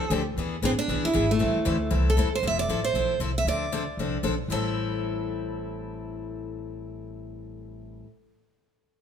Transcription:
0.00 0.24 A4 medium
0.10 0.36 D2 loud
0.10 0.21 D3 medium
0.10 0.21 F3 medium
0.10 0.21 C4 medium
0.10 0.21 D4 loud
0.10 0.22 A4 loud
0.37 0.61 E2 medium
0.37 0.55 E3 medium
0.37 0.56 B3 medium
0.37 0.56 D4 medium
0.37 0.56 G#4 medium
0.62 0.76 A1 medium
0.62 0.73 E3 medium
0.62 0.73 B3 medium
0.62 0.70 C4 loud
0.62 0.73 D4 loud
0.62 0.73 G#4 loud
0.76 1.04 D4 loud
0.76 muted upright bass stroke soft
0.88 1.02 B1 medium
0.88 1.07 E3 medium
0.88 1.07 B3 medium
0.88 1.07 D4 medium
0.88 1.07 G#4 medium
1.04 1.30 E4 loud
1.04 muted upright bass stroke soft
1.13 1.40 G#1 loud
1.13 1.24 E3 medium
1.13 1.24 B3 medium
1.13 1.24 D4 medium
1.13 1.25 G#4 medium
1.31 2.15 A3 medium
1.39 1.53 A1 medium
1.39 1.58 E3 medium
1.39 1.58 G3 medium
1.39 1.58 C4 medium
1.39 1.58 E4 medium
1.39 1.59 A4 medium
1.55 muted upright bass stroke soft
1.65 1.91 D2 loud
1.65 1.75 E3 medium
1.65 1.76 G3 medium
1.65 1.76 C4 loud
1.65 1.76 E4 loud
1.65 1.76 A4 medium
1.90 2.16 C2 medium
1.90 2.09 E3 medium
1.90 2.09 G3 medium
1.90 2.09 C4 medium
1.90 2.09 E4 medium
1.90 2.09 A4 medium
2.10 2.32 A4 medium
2.17 2.42 E2 loud
2.17 2.27 E3 medium
2.17 2.28 G3 medium
2.17 2.28 C4 medium
2.17 2.28 E4 loud
2.17 2.28 A4 loud
2.35 2.44 C5 medium
2.43 2.63 F1 medium
2.43 2.61 F3 medium
2.43 2.61 C4 medium
2.43 2.61 E4 medium
2.43 2.61 A4 medium
2.47 2.59 E5 loud
2.59 2.84 D5 loud
2.69 2.91 A1 medium
2.69 2.79 F3 medium
2.69 2.79 C4 medium
2.69 2.79 E4 medium
2.69 2.80 A4 medium
2.84 3.18 C5 medium
2.93 3.16 B1 medium
2.93 3.13 F3 medium
2.93 3.13 C4 medium
2.93 3.13 E4 medium
2.93 3.13 A4 medium
3.20 3.42 C2 medium
3.20 3.30 F3 medium
3.20 3.30 C4 medium
3.20 3.31 E4 medium
3.20 3.31 A4 loud
3.38 3.47 E5 medium
3.45 3.86 D2 medium
3.45 3.65 D3 medium
3.45 3.65 F3 medium
3.45 3.65 C4 medium
3.45 3.65 D4 medium
3.45 3.65 A4 medium
3.45 4.21 D5 medium
3.72 3.82 D3 medium
3.72 3.82 F3 medium
3.72 3.82 C4 medium
3.72 3.82 D4 medium
3.72 3.83 A4 loud
3.97 4.19 C2 medium
3.97 4.16 D3 medium
3.97 4.17 F3 medium
3.97 4.17 C4 medium
3.97 4.17 D4 medium
3.97 4.17 A4 medium
4.23 4.45 B1 medium
4.23 4.33 D3 medium
4.23 4.34 F3 medium
4.23 4.34 C4 medium
4.23 4.34 D4 medium
4.23 4.34 A4 loud
4.48 8.01 A1 medium
4.48 8.06 A2 medium
4.48 8.06 E3 medium
4.48 8.06 G3 medium
4.48 8.07 C4 medium
4.48 8.07 E4 medium
4.48 8.03 A4 medium
4.48 8.07 A4 medium

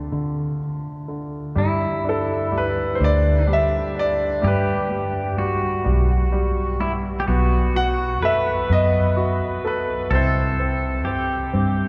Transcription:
0.00 0.12 D3 medium
0.00 0.59 A3 soft
0.00 0.57 F4 medium
0.12 1.07 D3 soft
0.12 1.53 D3 medium
1.08 1.56 D3 soft
1.56 2.51 G2 medium
1.56 2.50 G3 medium
1.56 3.46 E4 medium
2.05 2.99 D4 medium
2.09 2.52 A4 medium
2.51 2.97 D2 medium
2.51 3.46 G3 medium
2.58 2.94 B4 medium
2.95 3.02 C5 medium
3.00 4.40 D2 medium
3.00 3.94 D4 medium
3.04 3.52 D5 medium
3.46 4.40 G3 medium
3.46 4.53 D4 medium
3.53 3.96 E5 medium
3.95 4.42 D4 medium
3.99 4.43 D5 medium
4.42 5.38 G2 medium
4.42 4.88 G3 medium
4.42 5.38 G4 medium
4.47 6.79 D4 medium
4.47 6.79 B4 medium
4.90 5.36 G3 soft
5.37 5.83 B1 medium
5.37 5.83 G3 medium
5.37 6.77 F#4 medium
5.84 7.24 B1 medium
5.84 6.31 G3 medium
6.32 6.78 G3 medium
6.80 7.26 G3 medium
6.80 6.92 E4 medium
7.20 7.27 G4 medium
7.28 8.22 B1 medium
7.28 8.68 B3 medium
7.28 8.18 F#4 medium
7.75 9.15 F#4 soft
7.75 8.25 F#5 medium
8.22 8.67 F#2 medium
8.22 9.63 A4 soft
8.22 10.08 B4 loud
8.22 8.68 E5 medium
8.70 10.08 F#2 medium
8.70 10.08 B3 medium
8.70 9.62 D#5 medium
9.17 10.09 F#4 medium
9.65 10.11 A4 medium
9.65 10.15 B4 medium
10.11 11.06 C2 medium
10.11 10.58 C4 medium
10.11 11.09 A4 loud
10.15 11.52 E4 medium
10.15 11.16 C5 medium
10.60 11.06 C4 soft
11.05 11.51 G2 medium
11.05 11.52 C4 soft
11.05 11.88 G4 medium
11.53 11.88 G2 medium
11.53 11.88 C4 medium

